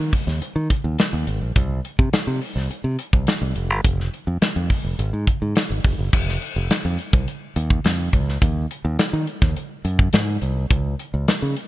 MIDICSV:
0, 0, Header, 1, 4, 480
1, 0, Start_track
1, 0, Tempo, 571810
1, 1308, Time_signature, 4, 2, 24, 8
1, 9803, End_track
2, 0, Start_track
2, 0, Title_t, "Fingered electric bass"
2, 0, Program_c, 0, 33
2, 0, Note_on_c, 0, 51, 78
2, 87, Note_off_c, 0, 51, 0
2, 227, Note_on_c, 0, 39, 80
2, 325, Note_off_c, 0, 39, 0
2, 467, Note_on_c, 0, 51, 87
2, 565, Note_off_c, 0, 51, 0
2, 707, Note_on_c, 0, 39, 83
2, 805, Note_off_c, 0, 39, 0
2, 949, Note_on_c, 0, 39, 73
2, 1046, Note_off_c, 0, 39, 0
2, 1068, Note_on_c, 0, 32, 86
2, 1165, Note_off_c, 0, 32, 0
2, 1187, Note_on_c, 0, 34, 72
2, 1285, Note_off_c, 0, 34, 0
2, 1309, Note_on_c, 0, 36, 107
2, 1504, Note_off_c, 0, 36, 0
2, 1670, Note_on_c, 0, 48, 89
2, 1766, Note_off_c, 0, 48, 0
2, 1907, Note_on_c, 0, 48, 79
2, 2005, Note_off_c, 0, 48, 0
2, 2146, Note_on_c, 0, 36, 82
2, 2244, Note_off_c, 0, 36, 0
2, 2385, Note_on_c, 0, 48, 93
2, 2484, Note_off_c, 0, 48, 0
2, 2628, Note_on_c, 0, 36, 66
2, 2725, Note_off_c, 0, 36, 0
2, 2867, Note_on_c, 0, 36, 77
2, 2965, Note_off_c, 0, 36, 0
2, 2986, Note_on_c, 0, 29, 78
2, 3106, Note_off_c, 0, 29, 0
2, 3106, Note_on_c, 0, 31, 85
2, 3204, Note_off_c, 0, 31, 0
2, 3229, Note_on_c, 0, 29, 88
2, 3423, Note_off_c, 0, 29, 0
2, 3586, Note_on_c, 0, 41, 80
2, 3684, Note_off_c, 0, 41, 0
2, 3828, Note_on_c, 0, 41, 84
2, 3925, Note_off_c, 0, 41, 0
2, 4067, Note_on_c, 0, 29, 72
2, 4165, Note_off_c, 0, 29, 0
2, 4187, Note_on_c, 0, 32, 87
2, 4285, Note_off_c, 0, 32, 0
2, 4307, Note_on_c, 0, 44, 87
2, 4405, Note_off_c, 0, 44, 0
2, 4549, Note_on_c, 0, 44, 81
2, 4646, Note_off_c, 0, 44, 0
2, 4787, Note_on_c, 0, 32, 70
2, 4885, Note_off_c, 0, 32, 0
2, 4906, Note_on_c, 0, 29, 70
2, 5004, Note_off_c, 0, 29, 0
2, 5027, Note_on_c, 0, 30, 79
2, 5125, Note_off_c, 0, 30, 0
2, 5147, Note_on_c, 0, 29, 86
2, 5342, Note_off_c, 0, 29, 0
2, 5508, Note_on_c, 0, 29, 93
2, 5606, Note_off_c, 0, 29, 0
2, 5748, Note_on_c, 0, 41, 91
2, 5846, Note_off_c, 0, 41, 0
2, 5987, Note_on_c, 0, 36, 86
2, 6085, Note_off_c, 0, 36, 0
2, 6348, Note_on_c, 0, 39, 89
2, 6543, Note_off_c, 0, 39, 0
2, 6588, Note_on_c, 0, 41, 85
2, 6782, Note_off_c, 0, 41, 0
2, 6827, Note_on_c, 0, 37, 82
2, 7022, Note_off_c, 0, 37, 0
2, 7068, Note_on_c, 0, 39, 97
2, 7262, Note_off_c, 0, 39, 0
2, 7426, Note_on_c, 0, 39, 90
2, 7524, Note_off_c, 0, 39, 0
2, 7666, Note_on_c, 0, 51, 97
2, 7764, Note_off_c, 0, 51, 0
2, 7907, Note_on_c, 0, 39, 77
2, 8004, Note_off_c, 0, 39, 0
2, 8265, Note_on_c, 0, 42, 82
2, 8461, Note_off_c, 0, 42, 0
2, 8507, Note_on_c, 0, 44, 89
2, 8702, Note_off_c, 0, 44, 0
2, 8746, Note_on_c, 0, 36, 79
2, 8941, Note_off_c, 0, 36, 0
2, 8987, Note_on_c, 0, 37, 98
2, 9182, Note_off_c, 0, 37, 0
2, 9349, Note_on_c, 0, 37, 88
2, 9446, Note_off_c, 0, 37, 0
2, 9590, Note_on_c, 0, 49, 78
2, 9686, Note_off_c, 0, 49, 0
2, 9803, End_track
3, 0, Start_track
3, 0, Title_t, "Muted fingered electric bass strokes"
3, 348, Note_on_c, 9, 29, 44
3, 432, Note_off_c, 9, 29, 0
3, 1788, Note_on_c, 9, 29, 46
3, 1872, Note_off_c, 9, 29, 0
3, 2266, Note_on_c, 9, 29, 48
3, 2350, Note_off_c, 9, 29, 0
3, 3706, Note_on_c, 9, 29, 44
3, 3790, Note_off_c, 9, 29, 0
3, 7547, Note_on_c, 9, 29, 47
3, 7631, Note_off_c, 9, 29, 0
3, 9803, End_track
4, 0, Start_track
4, 0, Title_t, "Drums"
4, 107, Note_on_c, 9, 46, 74
4, 108, Note_on_c, 9, 36, 78
4, 191, Note_off_c, 9, 46, 0
4, 192, Note_off_c, 9, 36, 0
4, 235, Note_on_c, 9, 38, 38
4, 319, Note_off_c, 9, 38, 0
4, 351, Note_on_c, 9, 42, 75
4, 435, Note_off_c, 9, 42, 0
4, 589, Note_on_c, 9, 36, 74
4, 590, Note_on_c, 9, 42, 76
4, 673, Note_off_c, 9, 36, 0
4, 674, Note_off_c, 9, 42, 0
4, 827, Note_on_c, 9, 42, 79
4, 837, Note_on_c, 9, 38, 117
4, 911, Note_off_c, 9, 42, 0
4, 921, Note_off_c, 9, 38, 0
4, 1067, Note_on_c, 9, 42, 60
4, 1151, Note_off_c, 9, 42, 0
4, 1307, Note_on_c, 9, 42, 75
4, 1309, Note_on_c, 9, 36, 92
4, 1391, Note_off_c, 9, 42, 0
4, 1393, Note_off_c, 9, 36, 0
4, 1552, Note_on_c, 9, 42, 74
4, 1636, Note_off_c, 9, 42, 0
4, 1670, Note_on_c, 9, 36, 90
4, 1754, Note_off_c, 9, 36, 0
4, 1790, Note_on_c, 9, 42, 94
4, 1793, Note_on_c, 9, 38, 104
4, 1874, Note_off_c, 9, 42, 0
4, 1877, Note_off_c, 9, 38, 0
4, 2027, Note_on_c, 9, 46, 72
4, 2111, Note_off_c, 9, 46, 0
4, 2156, Note_on_c, 9, 38, 38
4, 2240, Note_off_c, 9, 38, 0
4, 2271, Note_on_c, 9, 42, 71
4, 2355, Note_off_c, 9, 42, 0
4, 2508, Note_on_c, 9, 42, 78
4, 2592, Note_off_c, 9, 42, 0
4, 2628, Note_on_c, 9, 36, 83
4, 2712, Note_off_c, 9, 36, 0
4, 2745, Note_on_c, 9, 42, 78
4, 2755, Note_on_c, 9, 38, 102
4, 2829, Note_off_c, 9, 42, 0
4, 2839, Note_off_c, 9, 38, 0
4, 2986, Note_on_c, 9, 42, 55
4, 3070, Note_off_c, 9, 42, 0
4, 3227, Note_on_c, 9, 42, 81
4, 3228, Note_on_c, 9, 36, 90
4, 3311, Note_off_c, 9, 42, 0
4, 3312, Note_off_c, 9, 36, 0
4, 3358, Note_on_c, 9, 38, 29
4, 3441, Note_off_c, 9, 38, 0
4, 3472, Note_on_c, 9, 42, 62
4, 3556, Note_off_c, 9, 42, 0
4, 3709, Note_on_c, 9, 42, 91
4, 3712, Note_on_c, 9, 38, 106
4, 3793, Note_off_c, 9, 42, 0
4, 3796, Note_off_c, 9, 38, 0
4, 3945, Note_on_c, 9, 46, 72
4, 3946, Note_on_c, 9, 36, 73
4, 4029, Note_off_c, 9, 46, 0
4, 4030, Note_off_c, 9, 36, 0
4, 4190, Note_on_c, 9, 42, 74
4, 4274, Note_off_c, 9, 42, 0
4, 4427, Note_on_c, 9, 36, 77
4, 4427, Note_on_c, 9, 42, 71
4, 4511, Note_off_c, 9, 36, 0
4, 4511, Note_off_c, 9, 42, 0
4, 4664, Note_on_c, 9, 42, 78
4, 4674, Note_on_c, 9, 38, 108
4, 4748, Note_off_c, 9, 42, 0
4, 4758, Note_off_c, 9, 38, 0
4, 4902, Note_on_c, 9, 46, 55
4, 4907, Note_on_c, 9, 36, 79
4, 4986, Note_off_c, 9, 46, 0
4, 4991, Note_off_c, 9, 36, 0
4, 5147, Note_on_c, 9, 36, 92
4, 5147, Note_on_c, 9, 49, 83
4, 5231, Note_off_c, 9, 36, 0
4, 5231, Note_off_c, 9, 49, 0
4, 5275, Note_on_c, 9, 38, 29
4, 5359, Note_off_c, 9, 38, 0
4, 5388, Note_on_c, 9, 42, 69
4, 5472, Note_off_c, 9, 42, 0
4, 5629, Note_on_c, 9, 42, 89
4, 5632, Note_on_c, 9, 38, 100
4, 5713, Note_off_c, 9, 42, 0
4, 5716, Note_off_c, 9, 38, 0
4, 5864, Note_on_c, 9, 42, 66
4, 5948, Note_off_c, 9, 42, 0
4, 5987, Note_on_c, 9, 36, 86
4, 6071, Note_off_c, 9, 36, 0
4, 6110, Note_on_c, 9, 42, 67
4, 6194, Note_off_c, 9, 42, 0
4, 6348, Note_on_c, 9, 42, 75
4, 6431, Note_off_c, 9, 42, 0
4, 6467, Note_on_c, 9, 36, 89
4, 6551, Note_off_c, 9, 36, 0
4, 6585, Note_on_c, 9, 42, 83
4, 6595, Note_on_c, 9, 38, 109
4, 6669, Note_off_c, 9, 42, 0
4, 6679, Note_off_c, 9, 38, 0
4, 6824, Note_on_c, 9, 42, 59
4, 6826, Note_on_c, 9, 36, 76
4, 6907, Note_off_c, 9, 42, 0
4, 6910, Note_off_c, 9, 36, 0
4, 6954, Note_on_c, 9, 38, 30
4, 7038, Note_off_c, 9, 38, 0
4, 7066, Note_on_c, 9, 36, 99
4, 7067, Note_on_c, 9, 42, 82
4, 7150, Note_off_c, 9, 36, 0
4, 7151, Note_off_c, 9, 42, 0
4, 7311, Note_on_c, 9, 42, 78
4, 7394, Note_off_c, 9, 42, 0
4, 7547, Note_on_c, 9, 42, 96
4, 7550, Note_on_c, 9, 38, 118
4, 7631, Note_off_c, 9, 42, 0
4, 7634, Note_off_c, 9, 38, 0
4, 7784, Note_on_c, 9, 42, 61
4, 7867, Note_off_c, 9, 42, 0
4, 7907, Note_on_c, 9, 36, 96
4, 7909, Note_on_c, 9, 38, 40
4, 7991, Note_off_c, 9, 36, 0
4, 7993, Note_off_c, 9, 38, 0
4, 8029, Note_on_c, 9, 42, 68
4, 8113, Note_off_c, 9, 42, 0
4, 8266, Note_on_c, 9, 42, 83
4, 8350, Note_off_c, 9, 42, 0
4, 8386, Note_on_c, 9, 36, 86
4, 8470, Note_off_c, 9, 36, 0
4, 8502, Note_on_c, 9, 42, 83
4, 8512, Note_on_c, 9, 38, 117
4, 8586, Note_off_c, 9, 42, 0
4, 8596, Note_off_c, 9, 38, 0
4, 8743, Note_on_c, 9, 42, 56
4, 8827, Note_off_c, 9, 42, 0
4, 8985, Note_on_c, 9, 42, 88
4, 8987, Note_on_c, 9, 36, 108
4, 9069, Note_off_c, 9, 42, 0
4, 9071, Note_off_c, 9, 36, 0
4, 9229, Note_on_c, 9, 42, 77
4, 9313, Note_off_c, 9, 42, 0
4, 9470, Note_on_c, 9, 42, 92
4, 9472, Note_on_c, 9, 38, 124
4, 9554, Note_off_c, 9, 42, 0
4, 9556, Note_off_c, 9, 38, 0
4, 9707, Note_on_c, 9, 42, 69
4, 9791, Note_off_c, 9, 42, 0
4, 9803, End_track
0, 0, End_of_file